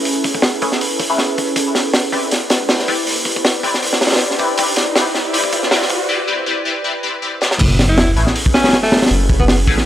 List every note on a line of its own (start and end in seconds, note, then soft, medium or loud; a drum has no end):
0.00 0.60 A3 medium
0.00 0.60 C#4 medium
0.00 0.60 E4 medium
0.00 0.60 G#4 medium
0.00 0.60 B4 medium
0.05 open hi-hat medium
0.24 kick medium
0.24 open hi-hat medium
0.34 1.35 C#4 loud
0.34 1.35 E4 loud
0.34 1.35 G#4 loud
0.34 1.35 A4 loud
0.34 1.35 B4 loud
0.34 kick loud
0.42 snare loud
0.42 open hi-hat medium
0.62 0.67 A3 medium
0.62 0.67 C#4 medium
0.62 0.67 E4 medium
0.62 0.67 G#4 medium
0.62 0.67 B4 loud
0.62 kick loud
0.62 open hi-hat medium
0.72 snare soft
0.81 open hi-hat medium
0.99 kick loud
0.99 open hi-hat medium
1.10 1.17 A3 medium
1.10 1.17 C#4 medium
1.10 1.17 E4 medium
1.10 1.17 G#4 medium
1.10 1.17 B4 medium
1.18 snare soft
1.18 open hi-hat medium
1.38 kick medium
1.38 open hi-hat medium
1.56 kick loud
1.56 open hi-hat medium
1.56 riser medium
1.75 snare medium
1.75 open hi-hat medium
1.85 2.86 E4 loud
1.85 2.86 G4 loud
1.85 2.86 B4 loud
1.85 2.86 C5 loud
1.85 2.86 D5 loud
1.94 snare loud
1.94 open hi-hat medium
2.12 2.18 C4 medium
2.12 2.18 E4 medium
2.12 2.18 G4 medium
2.12 2.18 B4 medium
2.12 2.18 D5 loud
2.12 kick loud
2.12 open hi-hat medium
2.31 snare medium
2.31 open hi-hat medium
2.50 snare loud
2.50 open hi-hat medium
2.69 snare loud
2.69 open hi-hat medium
2.79 snare soft
2.88 2.93 C4 medium
2.88 2.93 E4 medium
2.88 2.93 G4 medium
2.88 2.93 B4 medium
2.88 2.93 D5 loud
2.88 kick medium
2.88 open hi-hat medium
3.07 open hi-hat medium
3.25 kick loud
3.25 open hi-hat medium
3.36 4.37 E4 loud
3.36 4.37 G4 loud
3.36 4.37 B4 loud
3.36 4.37 C5 loud
3.36 4.37 D5 loud
3.36 kick medium
3.45 snare loud
3.45 open hi-hat medium
3.63 3.69 C4 medium
3.63 3.69 E4 medium
3.63 3.69 G4 medium
3.63 3.69 B4 medium
3.63 3.69 D5 loud
3.63 kick medium
3.63 open hi-hat medium
3.74 snare soft
3.82 open hi-hat medium
3.93 snare medium
4.01 snare medium
4.01 open hi-hat medium
4.06 snare medium
4.06 open hi-hat medium
4.11 snare medium
4.11 open hi-hat medium
4.16 snare medium
4.16 open hi-hat medium
4.20 open hi-hat medium
4.31 snare soft
4.39 4.44 C4 medium
4.39 4.44 E4 medium
4.39 4.44 G4 medium
4.39 4.44 B4 medium
4.39 4.44 D5 loud
4.39 kick medium
4.39 open hi-hat medium
4.57 4.63 C4 loud
4.57 4.63 E4 medium
4.57 4.63 G4 medium
4.57 4.63 B4 medium
4.57 4.63 D5 loud
4.57 kick loud
4.57 open hi-hat medium
4.76 snare medium
4.76 open hi-hat medium
4.87 5.88 E4 loud
4.87 5.88 G4 loud
4.87 5.88 B4 loud
4.87 5.88 C5 loud
4.87 5.88 D5 loud
4.95 5.01 C4 loud
4.95 5.01 E4 medium
4.95 5.01 G4 medium
4.95 5.01 B4 medium
4.95 5.01 D5 loud
4.95 snare loud
4.95 open hi-hat medium
5.14 snare soft
5.14 open hi-hat medium
5.33 5.39 C4 medium
5.33 5.39 E4 medium
5.33 5.39 G4 medium
5.33 5.39 B4 medium
5.33 5.39 D5 loud
5.33 open hi-hat medium
5.44 kick medium
5.52 kick medium
5.52 open hi-hat medium
5.63 snare soft
5.71 5.76 C4 medium
5.71 5.76 E4 medium
5.71 5.76 G4 medium
5.71 5.76 B4 medium
5.71 5.76 D5 loud
5.71 snare loud
5.71 open hi-hat medium
5.82 snare medium
5.89 kick medium
5.89 open hi-hat medium
6.09 6.14 C4 loud
6.09 6.14 E4 medium
6.09 6.14 G4 medium
6.09 6.14 B4 medium
6.09 6.14 D5 loud
6.28 6.33 C4 loud
6.28 6.33 E4 medium
6.28 6.33 G4 medium
6.28 6.33 B4 medium
6.28 6.33 D5 loud
6.46 6.52 C4 loud
6.46 6.52 E4 medium
6.46 6.52 G4 medium
6.46 6.52 B4 medium
6.46 6.52 D5 loud
6.65 6.71 C4 loud
6.65 6.71 E4 medium
6.65 6.71 G4 medium
6.65 6.71 B4 medium
6.65 6.71 D5 loud
6.84 6.90 C4 loud
6.84 6.90 E4 medium
6.84 6.90 G4 medium
6.84 6.90 B4 medium
6.84 6.90 D5 loud
7.03 7.08 C4 loud
7.03 7.08 E4 medium
7.03 7.08 G4 medium
7.03 7.08 B4 medium
7.03 7.08 D5 loud
7.22 7.27 C4 loud
7.22 7.27 E4 medium
7.22 7.27 G4 medium
7.22 7.27 B4 medium
7.22 7.27 D5 loud
7.41 7.46 C4 medium
7.41 7.46 E4 medium
7.41 7.46 G4 medium
7.41 7.46 B4 medium
7.41 7.46 D5 loud
7.41 snare medium
7.51 snare medium
7.59 8.16 F#1 loud
7.59 kick loud
7.59 open hi-hat medium
7.59 crash loud
7.59 sub drop medium
7.79 snare medium
7.79 open hi-hat medium
7.88 8.90 C#4 loud
7.88 8.90 E4 loud
7.88 8.11 E4 loud
7.88 8.90 G#4 loud
7.88 8.90 A4 medium
7.88 8.90 B4 loud
7.98 snare loud
7.98 open hi-hat medium
8.16 8.26 A1 medium
8.16 8.22 A3 medium
8.16 8.22 C#4 medium
8.16 8.22 E4 medium
8.16 8.22 G#4 medium
8.16 8.22 B4 loud
8.16 open hi-hat medium
8.27 snare soft
8.35 open hi-hat loud
8.46 kick medium
8.54 8.59 A3 medium
8.54 8.59 C#4 medium
8.54 8.77 C#4 medium
8.54 8.59 E4 medium
8.54 8.59 G#4 medium
8.54 8.59 B4 medium
8.54 snare loud
8.54 open hi-hat medium
8.64 8.71 A3 medium
8.64 8.71 C#4 medium
8.64 8.71 E4 medium
8.64 8.71 G#4 medium
8.64 8.71 B4 medium
8.64 snare loud
8.64 open hi-hat medium
8.68 snare medium
8.68 open hi-hat medium
8.73 snare loud
8.73 open hi-hat medium
8.83 9.06 A3 loud
8.83 snare medium
8.92 snare loud
8.92 open hi-hat medium
8.97 snare medium
8.97 open hi-hat medium
9.02 snare medium
9.02 open hi-hat medium
9.06 snare medium
9.06 open hi-hat medium
9.11 9.66 F#1 loud
9.11 open hi-hat medium
9.29 kick medium
9.29 open hi-hat medium
9.39 9.45 B3 medium
9.39 9.86 C#4 loud
9.39 9.86 E4 loud
9.39 9.86 G#4 loud
9.39 9.86 A4 loud
9.39 9.86 B4 loud
9.39 kick loud
9.48 9.55 B3 medium
9.48 snare loud
9.48 open hi-hat loud
9.67 9.77 A1 medium
9.67 9.73 A3 medium
9.67 9.73 C#4 medium
9.67 9.73 E4 medium
9.67 9.73 G#4 medium
9.67 9.73 B4 loud
9.67 kick medium
9.67 open hi-hat medium
9.78 snare soft